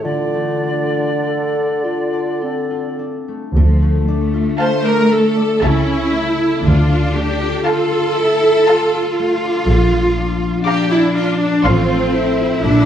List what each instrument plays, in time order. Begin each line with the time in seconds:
Already playing: harp A3
0.03 bassoon D3, harp D3, clarinet F4, flute D5
0.34 harp A3
0.64 harp D4
0.94 harp F4
1.23 harp A4, clarinet A4
1.54 harp D5
1.84 clarinet F4, harp A4
2.13 harp D5
2.41 clarinet C4, harp A4
2.71 harp F4
2.99 harp D4
3.28 harp A3
3.56 double bass section D2, harp D3, cello section F3
3.82 harp A3
4.08 cello section A3, harp D4
4.34 harp F4
4.59 harp A4, viola section C5, violin section F5 A5
4.84 viola section A#4, harp D5
5.10 harp A4, viola section A4
5.36 harp D5
5.61 double bass section C#2, harp C#3, cello section C#4, viola section E4, violin section E5 A5
5.87 harp C#4
6.12 harp A3, cello section E4
6.38 harp E4
6.64 double bass section D2, harp D3, cello section D4, viola section F4
6.90 harp D4
7.14 harp A3, viola section G4
7.41 harp F4
7.65 cello section F4, viola section A4, harp A4, violin section F5 A5
7.92 harp F4
8.17 cello section E4, harp A4
8.43 harp F4
8.67 cello section F4, harp A4, violin section F5 A5
8.94 harp F4
9.19 harp A3
9.44 harp D4
9.68 double bass section A#1, harp A#2
9.93 harp F3
10.18 harp D4
10.42 harp F4
10.65 cello section D4, viola section G4, harp A#4, violin section F5 A#5 D6
10.90 viola section E4, harp D5
11.16 viola section F4, harp A#4
11.40 viola section D4, harp D5
11.64 double bass section A1, harp A2, viola section C4, cello section F4, violin section F5 C6
11.90 harp A3
12.15 harp C4, cello section E4
12.39 harp F4
12.63 double bass section A#1, harp A#2, viola section D4